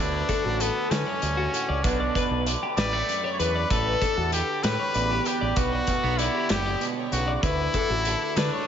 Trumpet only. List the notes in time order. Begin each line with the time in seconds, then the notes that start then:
0.00 D4
0.61 B3
0.91 C#4
1.83 D4
2.78 D5
3.33 C#5
3.39 B4
3.71 A4
4.33 G4
4.63 B4
5.27 G4
5.57 F#4
6.18 E4
6.50 G4
7.12 F#4
7.36 F#4
7.42 E4
8.38 D4